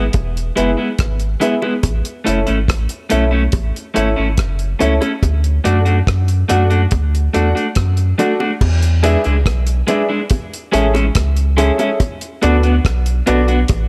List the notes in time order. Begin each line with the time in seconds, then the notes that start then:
0.13 E1, kick, closed hi-hat, high bongo
0.37 closed hi-hat
0.56 F#1 G#3 B3 E4 G#4 B4 E5, closed hi-hat
0.77 G#3 B3 E4
0.99 G#1, kick, cross-stick, closed hi-hat
1.20 closed hi-hat
1.40 G#3 B3 E4 G#4 B4 E5, closed hi-hat, low bongo
1.62 G#3 B3 E4, high bongo
1.83 A1, kick, closed hi-hat, high bongo
2.05 closed hi-hat
2.24 F#1 A3 C#4 E4 A4 C#5 E5, closed hi-hat
2.47 G#1 A3 C#4 E4, closed hi-hat
2.68 A1, kick, cross-stick, closed hi-hat
2.89 closed hi-hat
3.10 B1 A3 C#4 E4 A4 C#5 E5, closed hi-hat, high bongo
3.31 A3 C#4 E4
3.52 A1, kick, closed hi-hat, high bongo
3.76 closed hi-hat
3.94 G#1 A3 C#4 E4 A4 C#5 E5, closed hi-hat
4.16 G#1 A3 C#4 E4
4.38 F#1, kick, cross-stick, closed hi-hat
4.59 closed hi-hat
4.79 C#2 A3 C#4 E4 A4 C#5 E5, closed hi-hat, low bongo
5.01 A3 C#4 E4, closed hi-hat, high bongo
5.23 D2, kick, closed hi-hat, high bongo
5.44 closed hi-hat
5.64 F#2 A3 D4 F#4 A4 D5 F#5, closed hi-hat
5.85 A3 D4 F#4, closed hi-hat
6.07 F#2, kick, cross-stick, closed hi-hat
6.28 closed hi-hat
6.49 F#2 A3 D4 F#4 A4 D5 F#5, closed hi-hat, high bongo, low bongo
6.70 A3 D4 F#4, closed hi-hat
6.91 D2, kick, closed hi-hat, high bongo
7.15 closed hi-hat
7.33 E2 A3 D4 F#4 A4 D5 F#5, closed hi-hat
7.55 A3 D4 F#4, closed hi-hat
7.75 F#2, kick, cross-stick, closed hi-hat
7.97 closed hi-hat
8.18 A3 D4 F#4 A4 D5 F#5, closed hi-hat, low bongo
8.40 A3 D4 F#4, high bongo
8.61 E2, kick, crash, high bongo
8.82 closed hi-hat
9.03 G#3 D4 E4 G#4 B4 D5 E5, closed hi-hat, high bongo
9.24 C#2 G#3 D4 E4, closed hi-hat
9.46 B1, kick, cross-stick, closed hi-hat
9.67 closed hi-hat
9.87 G#3 D4 E4 G#4 B4 D5 E5, closed hi-hat, high bongo, low bongo
10.09 G#3 D4 E4
10.30 kick, closed hi-hat, high bongo
10.54 closed hi-hat
10.72 A1 G#3 C#4 E4 G#4 A4 C#5 E5, closed hi-hat
10.94 G#3 C#4 E4, closed hi-hat, high bongo
11.15 C#2, kick, cross-stick, closed hi-hat
11.37 closed hi-hat
11.57 G#3 C#4 E4 G#4 A4 C#5 E5, closed hi-hat, low bongo
11.78 G#3 C#4 E4 G#4 A4 C#5 E5, closed hi-hat, high bongo
12.00 kick, closed hi-hat, high bongo
12.21 closed hi-hat
12.42 D2 B3 D4 F#4 A4 B4 D5, closed hi-hat, high bongo
12.63 B3 D4 F#4, closed hi-hat
12.85 B1, kick, cross-stick, closed hi-hat
13.06 closed hi-hat
13.26 B1 B3 D4 F#4 A4 B4 D5, closed hi-hat, high bongo, low bongo
13.48 B3 D4 F#4, closed hi-hat
13.68 A1, kick, closed hi-hat, high bongo